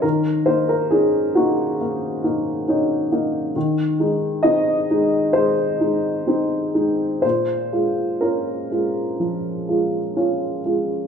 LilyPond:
\new Staff \with { instrumentName = "Upright piano" } { \time 4/4 \key bes \minor \tempo 4 = 65 << { bes'8 c''16 bes'16 aes'8 ges'2~ ges'8 | r4 ees''4 c''2 | c''4 bes'2 r4 | } \\ { ees8 <bes ees'>8 <des' ees'>8 <bes ees'>8 bes8 <bes ees'>8 <des' ees'>8 <bes ees'>8 | ees8 <aes ees'>8 <c' ees'>8 <aes ees'>8 aes8 <aes ees'>8 <c' ees'>8 <aes ees'>8 | bes,8 <aes f'>8 <des' f'>8 <aes f'>8 f8 <aes f'>8 <des' f'>8 <aes f'>8 | } >> }